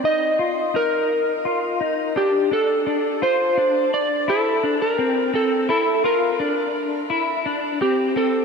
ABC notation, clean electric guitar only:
X:1
M:4/4
L:1/8
Q:1/4=85
K:F
V:1 name="Clean electric guitar"
_E F E2 F E D D | D F D2 E D C C | E F D2 E D C C |]